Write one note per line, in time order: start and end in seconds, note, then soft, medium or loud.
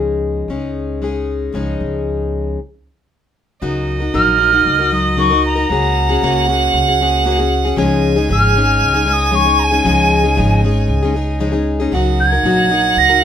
0.00 0.45 C#2 medium
0.00 0.48 C#3 medium
0.00 0.49 F3 medium
0.00 0.48 G#3 medium
0.00 0.49 C#4 medium
0.00 0.50 D#4 medium
0.00 0.50 G#4 medium
0.48 1.49 C#2 medium
0.48 1.00 G#3 soft
0.48 1.01 C#4 medium
0.48 1.02 D#4 medium
0.48 1.02 G#4 soft
1.02 1.54 G#3 soft
1.02 1.54 C#4 medium
1.02 1.54 D#4 medium
1.02 1.55 G#4 medium
1.52 1.78 C#2 medium
1.52 2.57 C#3 medium
1.52 2.58 F3 medium
1.52 2.58 G#3 medium
1.52 2.58 C#4 medium
1.52 2.59 D#4 medium
1.57 2.59 G#4 medium
1.80 2.54 C#2 medium
3.62 4.11 C#2 medium
3.62 4.01 C#3 medium
3.62 4.01 F#3 medium
3.62 4.01 D#4 medium
3.62 4.00 F#4 medium
3.62 3.99 A#4 medium
3.62 5.71 D#5 medium
4.00 4.13 D#4 soft
4.00 4.14 F#4 soft
4.00 4.13 A#4 soft
4.13 4.63 A#1 medium
4.13 4.39 C#3 medium
4.13 4.37 F#3 medium
4.13 4.38 D#4 medium
4.13 4.38 F#4 medium
4.13 4.40 A#4 medium
4.13 4.90 F6 medium
4.38 4.52 F#3 soft
4.38 4.52 D#4 medium
4.38 4.52 F#4 medium
4.38 4.51 A#4 medium
4.52 4.80 D#4 soft
4.52 4.79 F#4 soft
4.52 4.78 A#4 soft
4.65 5.66 C#2 medium
4.79 4.91 D#4 soft
4.79 4.92 F#4 soft
4.79 4.92 A#4 medium
4.92 5.16 F#3 soft
4.92 5.17 D#4 soft
4.92 5.17 F#4 medium
4.92 5.18 A#4 medium
4.92 5.18 D#6 medium
5.17 5.30 C#3 medium
5.17 5.31 F#3 medium
5.17 5.31 D#4 medium
5.17 5.31 F#4 medium
5.17 5.29 A#4 medium
5.17 5.44 C#6 medium
5.30 5.57 D#4 soft
5.30 5.57 F#4 soft
5.30 5.54 A#4 medium
5.45 6.45 A#5 medium
5.56 5.70 D#4 soft
5.56 5.69 F#4 soft
5.56 5.69 A#4 medium
5.69 6.19 C#2 medium
5.69 6.09 C#3 medium
5.69 6.09 A#3 medium
5.69 6.09 C#4 medium
5.69 6.09 F#4 medium
5.69 6.08 G#4 medium
5.69 7.78 F#5 loud
6.09 6.22 C#4 soft
6.09 6.23 F#4 soft
6.09 6.22 G#4 medium
6.22 6.71 C#2 medium
6.22 6.48 C#3 medium
6.22 6.47 A#3 medium
6.22 6.48 C#4 medium
6.22 6.48 F#4 medium
6.22 6.49 G#4 medium
6.48 6.87 A#3 medium
6.48 6.88 C#4 medium
6.48 6.87 F#4 medium
6.48 6.87 G#4 medium
6.73 7.74 C#2 medium
6.88 7.00 C#4 soft
6.88 7.01 F#4 soft
6.88 7.00 G#4 medium
7.00 7.24 A#3 medium
7.00 7.25 C#4 medium
7.00 7.25 F#4 medium
7.00 7.26 G#4 medium
7.25 7.38 C#3 medium
7.25 7.39 A#3 medium
7.25 7.39 C#4 medium
7.25 7.38 F#4 medium
7.25 7.37 G#4 medium
7.38 7.66 C#4 soft
7.38 7.64 F#4 soft
7.38 7.64 G#4 medium
7.65 7.77 C#4 soft
7.65 7.78 F#4 soft
7.65 7.77 G#4 medium
7.76 8.27 C#2 medium
7.76 8.16 C#3 medium
7.76 8.16 F3 medium
7.76 8.17 G#3 medium
7.76 8.17 C#4 medium
7.76 8.16 D#4 medium
7.76 8.15 G#4 medium
7.76 11.63 G#5 loud
8.16 8.28 G#3 soft
8.16 8.28 C#4 soft
8.16 8.29 D#4 soft
8.16 8.29 G#4 medium
8.28 8.79 G#1 medium
8.28 8.55 C#3 medium
8.28 8.55 F3 medium
8.28 8.55 G#3 medium
8.28 8.55 C#4 medium
8.28 8.56 D#4 medium
8.28 8.56 G#4 medium
8.28 9.09 F6 medium
8.56 8.94 G#3 medium
8.56 8.94 C#4 medium
8.56 8.93 D#4 medium
8.56 8.93 G#4 medium
8.82 9.81 C#2 medium
8.94 9.04 G#3 soft
8.94 9.06 C#4 soft
8.94 9.06 D#4 soft
8.94 9.07 G#4 soft
9.05 9.30 G#3 medium
9.05 9.32 C#4 medium
9.05 9.32 D#4 medium
9.05 9.32 G#4 medium
9.05 9.13 F6 medium
9.12 9.36 D#6 medium
9.31 9.45 C#3 medium
9.31 9.46 F3 medium
9.31 9.45 G#3 medium
9.31 9.46 C#4 medium
9.31 9.45 D#4 medium
9.31 9.44 G#4 medium
9.31 9.60 C#6 medium
9.45 9.72 G#3 soft
9.45 9.72 C#4 soft
9.45 9.71 D#4 soft
9.45 9.70 G#4 soft
9.59 9.64 A#5 medium
9.63 10.60 G#5 medium
9.71 9.84 G#3 soft
9.71 9.84 C#4 soft
9.71 9.84 D#4 medium
9.71 9.85 G#4 soft
9.85 10.35 C#2 medium
9.85 10.24 C#3 medium
9.85 10.24 F3 medium
9.85 10.24 G#3 medium
9.85 10.24 C#4 medium
9.85 10.24 D#4 medium
9.85 10.23 G#4 medium
10.24 10.36 G#3 soft
10.24 10.36 C#4 medium
10.24 10.36 D#4 soft
10.24 10.36 G#4 medium
10.36 10.87 G#1 medium
10.36 10.63 C#3 medium
10.36 10.63 F3 medium
10.36 10.62 G#3 medium
10.36 10.63 C#4 medium
10.36 10.63 D#4 medium
10.36 10.63 G#4 medium
10.63 11.02 G#3 medium
10.63 11.03 C#4 medium
10.63 11.03 D#4 medium
10.63 11.01 G#4 medium
10.88 11.88 C#2 medium
11.03 11.13 G#3 soft
11.03 11.14 C#4 soft
11.03 11.15 D#4 medium
11.03 11.15 G#4 medium
11.14 11.39 G#3 medium
11.14 11.39 D#4 medium
11.14 11.40 G#4 medium
11.40 11.54 C#3 medium
11.40 11.53 F3 medium
11.40 11.54 G#3 medium
11.40 11.53 C#4 medium
11.40 11.52 D#4 medium
11.40 11.51 G#4 medium
11.52 11.80 G#3 soft
11.52 11.80 C#4 soft
11.52 11.79 D#4 medium
11.52 11.79 G#4 medium
11.80 11.94 G#3 soft
11.80 11.94 C#4 soft
11.80 11.94 D#4 soft
11.80 11.93 G#4 medium
11.92 12.42 C#2 medium
11.92 12.32 C#3 medium
11.92 12.32 F#3 medium
11.92 12.33 D#4 medium
11.92 12.33 F#4 medium
11.92 12.31 A#4 medium
11.92 13.24 F#5 loud
12.19 12.99 G#6 medium
12.32 12.44 D#4 soft
12.32 12.45 F#4 soft
12.32 12.45 A#4 soft
12.43 12.93 A#1 medium
12.43 12.71 C#3 medium
12.43 12.70 F#3 medium
12.43 12.70 D#4 medium
12.43 12.71 F#4 medium
12.43 12.72 A#4 medium
12.71 13.10 F#3 medium
12.71 13.10 D#4 medium
12.71 13.09 F#4 medium
12.71 13.08 A#4 medium
12.96 13.24 C#2 medium
12.96 13.22 A#6 medium
13.09 13.22 D#4 soft
13.09 13.23 F#4 soft
13.09 13.22 A#4 medium